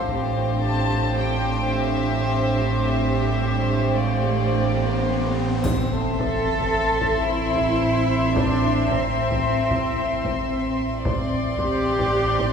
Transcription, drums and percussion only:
0.08 taiko
0.89 taiko
5.64 taiko, triangle
6.19 taiko
6.60 taiko
7.01 taiko
7.55 taiko
8.36 taiko
8.91 taiko
9.31 taiko
9.71 taiko
10.25 taiko
11.05 taiko
11.59 taiko
11.99 taiko
12.39 taiko

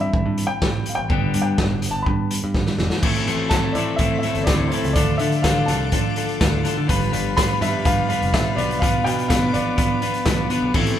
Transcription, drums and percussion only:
0.14 kick
0.38 closed hi-hat
0.62 kick, snare
0.86 closed hi-hat
1.10 kick
1.34 closed hi-hat
1.58 kick, snare
1.82 closed hi-hat
2.06 kick
2.31 closed hi-hat
2.54 kick, snare
2.66 snare
2.78 snare
2.90 snare
3.03 kick, crash
3.15 closed hi-hat
3.27 closed hi-hat
3.51 kick, snare, closed hi-hat
3.75 closed hi-hat
3.99 kick, closed hi-hat
4.23 closed hi-hat
4.35 closed hi-hat
4.47 kick, snare, closed hi-hat
4.72 closed hi-hat
4.84 closed hi-hat
4.95 kick, closed hi-hat
5.19 closed hi-hat
5.32 closed hi-hat
5.44 kick, snare, closed hi-hat
5.68 snare, closed hi-hat
5.92 kick, closed hi-hat
6.16 closed hi-hat
6.29 closed hi-hat
6.41 kick, snare, closed hi-hat
6.65 snare, closed hi-hat
6.89 kick, closed hi-hat
7.02 closed hi-hat
7.13 closed hi-hat
7.37 kick, snare, closed hi-hat
7.62 snare, closed hi-hat
7.85 kick, closed hi-hat
8.10 closed hi-hat
8.22 closed hi-hat
8.34 kick, snare, closed hi-hat
8.58 closed hi-hat
8.71 closed hi-hat
8.82 kick, closed hi-hat
9.06 closed hi-hat
9.19 closed hi-hat
9.30 kick, snare, closed hi-hat
9.54 closed hi-hat
9.78 kick, closed hi-hat
10.02 closed hi-hat
10.14 closed hi-hat
10.25 kick, snare, closed hi-hat
10.50 closed hi-hat
10.74 kick, crash
10.86 closed hi-hat

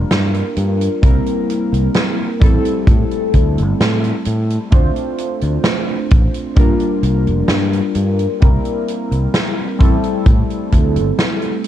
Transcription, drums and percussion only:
0.11 snare, closed hi-hat
0.34 closed hi-hat
0.57 closed hi-hat
0.81 closed hi-hat
1.03 kick, closed hi-hat
1.26 closed hi-hat
1.50 closed hi-hat
1.74 closed hi-hat
1.94 snare, closed hi-hat
2.42 kick, closed hi-hat
2.65 closed hi-hat
2.87 kick, closed hi-hat
3.11 closed hi-hat
3.34 kick, closed hi-hat
3.58 closed hi-hat
3.81 snare, closed hi-hat
4.04 closed hi-hat
4.25 closed hi-hat
4.50 closed hi-hat
4.72 kick, closed hi-hat
4.96 closed hi-hat
5.18 closed hi-hat
5.41 closed hi-hat
5.64 snare, closed hi-hat
6.11 kick, closed hi-hat
6.34 closed hi-hat
6.56 kick, closed hi-hat
6.80 closed hi-hat
7.03 closed hi-hat
7.27 closed hi-hat
7.48 snare, closed hi-hat
7.73 closed hi-hat
7.95 closed hi-hat
8.19 closed hi-hat
8.42 kick, closed hi-hat
8.65 closed hi-hat
8.88 closed hi-hat
9.12 closed hi-hat
9.34 snare, closed hi-hat
9.81 kick, closed hi-hat
10.04 closed hi-hat
10.26 kick, closed hi-hat
10.50 closed hi-hat
10.72 kick, closed hi-hat
10.96 closed hi-hat
11.18 snare, closed hi-hat
11.42 closed hi-hat
11.64 closed hi-hat

